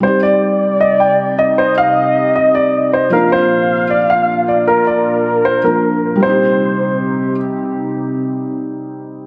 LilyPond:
<<
  \new Staff \with { instrumentName = "Grand piano" } { \time 4/4 \key c \minor \tempo 4 = 155 c''8 d''4. ees''8 g''4 ees''8 | c''8 f''4. ees''8 d''4 c''8 | bes'8 c''4. d''8 f''4 d''8 | bes'8 d''4. c''8 bes'4. |
c''2. r4 | r1 | }
  \new Staff \with { instrumentName = "Soft synth lead" } { \time 4/4 \key c \minor d''1 | ees''1 | f''1 | bes'1 |
c''2. r4 | r1 | }
  \new Staff \with { instrumentName = "Ambient pad" } { \time 4/4 \key c \minor <c c' ees' g'>1~ | <c c' ees' g'>1 | <bes, bes d' f'>1~ | <bes, bes d' f'>1 |
<c c' ees' g'>1~ | <c c' ees' g'>1 | }
  \new Staff \with { instrumentName = "Felt piano" } { \time 4/4 \key c \minor <g c' ees' g'>1~ | <g c' ees' g'>1 | <f bes d' f'>1~ | <f bes d' f'>2~ <f bes d' f'>8 <f bes d' f'>4. |
<g c' ees' g'>1~ | <g c' ees' g'>1 | }
>>